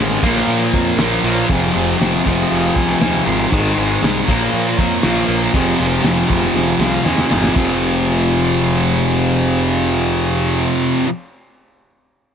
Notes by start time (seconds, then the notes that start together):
Already playing: A1 G#2
0.00 D#3 G#3 D#4 G#4 C5
0.23 A#1 A#2 F3 A#3 F4 A#4 C#5, kick, crash
0.37 snare
0.47 A#2
0.72 F2 F4 A#4 C#5, kick, open hi-hat
0.97 A#1 A#2 F3 F4 A#4 C#5, snare, open hi-hat
1.02 A#3
1.24 A#1 A#3 F4 A#4 C#5, open hi-hat
1.29 F3
1.49 F1 F2 C3 F3 F4 G#4 C5, kick, open hi-hat
1.74 F1 C3 F3 F4 G#4 C5, open hi-hat
1.98 F1 F2 C3 F3 F4 G#4 C5, snare, open hi-hat
2.24 F1 C3 F3 F4 G#4 C5 D#5, kick, open hi-hat
2.50 F1 F4 G#4 D#5 F5, open hi-hat
2.73 C2 F4 G#4 C5 G#5, kick
2.77 open hi-hat
2.89 snare
2.99 D#2 F2 C3 F3 F4 G#4 C5 G#5, snare, open hi-hat
3.25 G#1 C3 F3 F4 G#4 A#4 C6, open hi-hat
3.50 G#1 G#2 D#3 G#3 D#4 G#4 C5, kick, crash
3.76 G#1 D#3 G#3 D#4 G#4 C5, open hi-hat
3.99 G#2 D#4 G#4 C5
4.03 C2 D#3 G#3, snare, open hi-hat
4.27 A#1 A#2 F3 A#3 F4 A#4 C#5, kick, crash
4.53 A#2
4.77 F2 F4 A#4 C#5, kick, open hi-hat
5.01 A#1 A#2 F3 F4 A#4 C#5, snare, open hi-hat
5.06 A#3
5.26 A#1 A#3 F4 A#4 C#5, open hi-hat
5.30 F3
5.53 F1 F2 C3 F3 F4 G#4 C5, kick, open hi-hat
5.78 F1 C3 F3 F4 G#4 C5, open hi-hat
6.03 F1 F2 C3 F3 F4 G#4 C5, snare, open hi-hat
6.29 F1 C3 F3 F4 G#4 C5, kick, open hi-hat
6.43 snare
6.53 F1 F4 G#4 C5, snare
6.79 C2 F4 G#4 C5 F5, snare
7.03 D#2 F2 C3 F3 F4 G#4 C5 G#5, snare
7.18 snare
7.29 G#1 C3 F3 F4 G#4 A#4, snare
7.44 snare
7.54 F1 F2 C3 F3 F4 G#4 C5, kick, open hi-hat